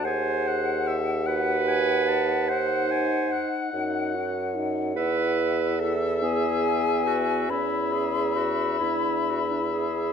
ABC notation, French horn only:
X:1
M:12/8
L:1/8
Q:3/8=48
K:Emix
V:1 name="French horn"
G3 F2 z ^D3 D F D | E3 B,3 C3 D2 z |]